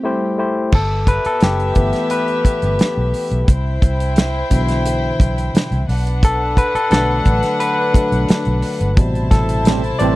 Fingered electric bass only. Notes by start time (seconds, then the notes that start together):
0.73 G1
1.26 muted fingered electric bass stroke
1.42 F#1
1.76 G1
2.45 muted fingered electric bass stroke
2.63 G1
2.97 B1
3.31 B1
3.48 C2
3.82 C2
4.51 B1
5.20 B1
5.55 muted fingered electric bass stroke
5.71 C2
5.89 B1
6.75 muted fingered electric bass stroke
6.92 B1
7.26 A1
7.95 muted fingered electric bass stroke
8.12 B1
8.29 muted fingered electric bass stroke
8.47 B1
8.81 G1
8.98 A1
9.32 A1
10.01 A1